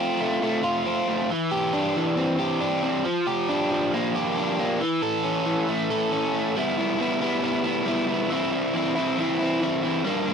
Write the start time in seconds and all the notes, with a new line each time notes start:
Already playing: A3 F4
0.00 C4
0.20 A3
0.42 A3
0.64 F4
0.86 C4
1.08 A3
1.30 E3
1.51 G4
1.73 D4
1.96 E3
2.17 C4
2.39 G4
2.61 D4
2.83 C4
3.05 F3
3.27 G4
3.49 D4
3.71 F3
3.94 A#3
4.15 G4
4.37 D4
4.59 A#3
4.81 E3
5.03 A4
5.25 C#4
5.46 E3
5.69 A3
5.91 A4
6.12 C#4
6.35 A3
6.56 G3 B3 E4
6.77 B3 E4
6.99 G3 B3 E4
7.21 G3 B3 E4
7.42 G3 B3 E4
7.64 B3 E4
7.86 G3 B3 E4
8.08 B3 E4
8.30 E3 C4 E4
8.52 C4 E4
8.74 E3 C4 E4
8.96 E3 C4 E4
9.17 E3 C4 E4
9.39 C4 E4
9.60 E3 C4 E4
9.82 C4 E4
10.04 G3 A#3 D4
10.26 A#3 D4